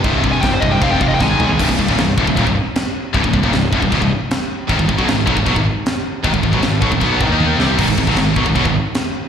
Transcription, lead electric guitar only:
0.32 G#5
0.41 G5
0.52 C5
0.60 D#5
0.72 G5
0.81 F5
0.91 G5
1.01 F5
1.08 D#5
1.14 G5
1.21 G#5

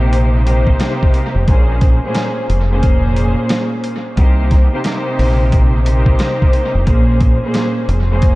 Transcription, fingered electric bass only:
Already playing: A#1
1.35 F1
1.48 A#1
2.49 F1
4.18 C2
5.19 A#1
6.75 F1
6.87 A#1
7.88 F1

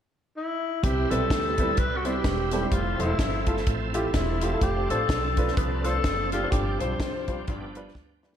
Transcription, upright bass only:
0.83 C2
1.11 B1
1.30 D2
1.78 C2
2.24 E1
2.71 F1
2.99 E1
3.19 G1
3.67 A1
4.13 E1
4.61 F1
4.90 A1
5.09 B1
5.57 C2
6.04 F#1
6.52 G1
6.80 B1
7.00 C2
7.48 G1
7.95 D2

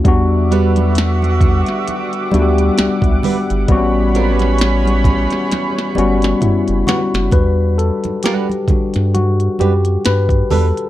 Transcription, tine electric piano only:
0.04 G3 B3 D4 F#4
2.32 G3 B3 D4 F#4
2.42 G4
3.68 G3 B3 C4 F#4
3.77 C#4
5.96 G3 B3 C#4 F#4
6.41 E4
6.87 F#4
7.33 G3 D4 F#4 B4
7.78 A4
8.24 G4
8.70 G3 D4 F#4
9.14 F#4
9.60 G4
10.06 B4
10.51 A4

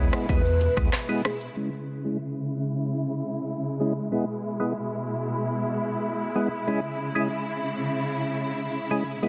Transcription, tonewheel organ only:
Already playing: G#3 B3 E4 G#4
0.29 G#3 B3 E4 G#4
0.77 G#3 B3 E4 G#4
1.09 G#3 B3 E4 G#4
1.57 G#3 C#4 E4 G#4
2.04 G#3 C#4 E4 G#4
3.80 G#3 C#4 E4 G#4
4.12 G#3 B3 E4 G#4
4.60 G#3 B3 E4 G#4
6.35 G#3 B3 E4 G#4
6.67 G#3 C#4 E4 G#4
7.15 G#3 C#4 E4 G#4
8.91 G#3 C#4 E4 G#4
9.23 G#3 B3 E4 G#4

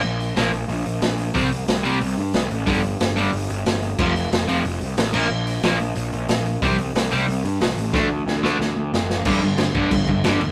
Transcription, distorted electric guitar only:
0.37 A#2 F3 A#3
1.34 C3 G3 C4
1.83 C3 G3 C4
2.66 G2 D3 G3
3.16 G2 D3 G3
3.99 F2 C3 F3
4.47 F2 C3 F3
5.13 A#2 F3 A#3
5.64 A#2 F3 A#3
6.62 C3 G3 C4
7.11 C3 G3 C4
7.93 D3 A3 D4
8.43 D3 A3 D4
9.26 G2 D3 G3
9.42 G2 D3
9.58 G2 D3
9.74 G2 D3 G3
9.92 G2 D3
10.09 G2 D3
10.24 G2 D3 G3
10.41 G2 D3

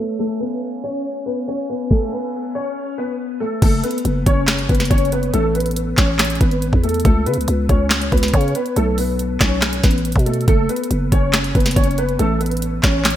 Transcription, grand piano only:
Already playing: A4
0.00 A3
0.19 A3 A4
0.40 B3 B4
0.84 C#4 C#5
1.26 B3 B4
1.48 C#4 C#5
1.70 B3 B4
1.91 A3 A4
2.12 B3 B4
2.55 C#4 C#5
2.98 B3 B4
3.40 A3 A4
3.62 A3 A4
3.83 B3 B4
4.26 C#4 C#5
4.69 B3 B4
4.90 C#4 C#5
5.12 B3 B4
5.34 A3 A4
5.55 B3 B4
5.98 C#4 C#5
6.41 B3 B4
6.83 A3 A4
7.05 A3 A4
7.26 B3 B4
7.69 C#4 C#5
8.12 B3 B4
8.34 C#4 C#5
8.55 B3 B4
8.77 A3 A4
8.98 B3 B4
9.41 C#4 C#5
9.84 B3 B4
10.26 A3 A4
10.48 A3 A4
10.69 B3 B4
11.12 C#4 C#5
11.55 B3 B4
11.76 C#4 C#5
11.98 B3 B4
12.19 A3 A4
12.41 B3 B4
12.84 C#4 C#5

